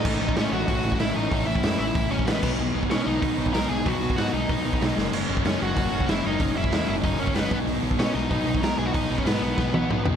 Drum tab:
CC |x---------------|--------------x-|----------------|----------------|
HH |----o---o---o---|o---o---o---o---|----o---o---o---|o---o---o---o---|
SD |----o-------o---|----o-------o---|----o-------o---|----o-------o-o-|
T1 |----------------|----------------|----------------|----------------|
T2 |----------------|----------------|----------------|----------------|
FT |----------------|----------------|----------------|----------------|
BD |o--o----o--o----|o--o----o--o--o-|---o----o--o----|o--o----o--o----|

CC |x---------------|----------------|----------------|----------------|
HH |----o---o---o---|o---o---o---o---|o---o---o---o---|o---o-----------|
SD |----o-------o---|----o-------o---|----o-------o---|----o---o-------|
T1 |----------------|----------------|----------------|----------o-----|
T2 |----------------|----------------|----------------|------------o---|
FT |----------------|----------------|----------------|--------------o-|
BD |---o----o--o----|o--o----o--o--o-|---o----o--o----|o--o----o-------|